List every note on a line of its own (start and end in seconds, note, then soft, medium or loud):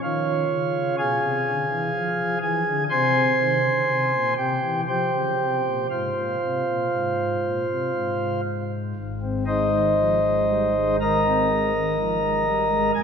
0.03 0.44 D#3 medium
0.03 0.95 F4 medium
0.03 0.95 C#5 medium
0.03 0.95 F5 loud
0.51 0.91 C#3 medium
0.98 1.19 B2 medium
0.98 2.39 G#4 medium
0.98 2.39 F5 medium
0.98 2.38 G#5 loud
1.22 1.42 C3 medium
1.47 1.67 D3 medium
1.70 1.90 E3 medium
1.94 2.35 F3 medium
2.42 2.63 E3 medium
2.42 2.84 G#4 medium
2.42 2.84 G#5 loud
2.67 2.87 D3 medium
2.90 3.32 C3 medium
2.90 4.34 C5 medium
2.90 4.34 G#5 medium
2.90 4.33 C6 loud
3.40 3.60 D#3 medium
3.63 3.84 C#3 medium
3.88 4.09 C3 medium
4.13 4.34 A#2 medium
4.37 4.59 C3 medium
4.37 4.81 G4 medium
4.37 4.81 G5 medium
4.63 4.85 E3 medium
4.88 5.10 F3 medium
4.88 5.87 G4 medium
4.88 5.87 C5 medium
4.88 5.87 G5 loud
5.14 5.36 C#3 medium
5.39 5.61 C3 medium
5.65 5.87 A#2 medium
5.90 6.12 G#2 medium
5.90 8.41 F4 medium
5.90 8.41 C5 medium
5.90 8.41 F5 medium
6.16 6.37 A#2 soft
6.42 6.63 C3 soft
6.67 6.89 A#2 medium
6.93 7.36 G#2 medium
7.44 7.65 A#2 medium
7.69 7.90 C3 soft
7.94 8.93 G#2 soft
8.95 12.91 G#1 medium
8.95 12.91 G#2 medium
9.22 9.44 C4 medium
9.47 9.69 G#3 soft
9.47 10.96 D#4 medium
9.47 10.96 C5 medium
9.47 10.96 D#5 medium
9.72 9.94 D#3 medium
9.98 10.19 F3 medium
10.22 10.46 G#3 soft
10.48 10.70 G3 soft
10.75 10.98 G#3 medium
11.01 11.23 D#3 medium
11.01 12.92 A#4 loud
11.01 12.92 D#5 loud
11.01 12.92 A#5 loud
11.26 11.48 C4 medium
11.50 11.72 G#3 medium
11.75 11.96 D#3 medium
11.98 12.19 F3 medium
12.23 12.44 G#3 medium
12.46 12.67 G3 medium
12.70 12.91 G#3 medium
12.95 13.03 F1 medium
12.95 13.03 F2 medium
12.95 13.01 G#5 loud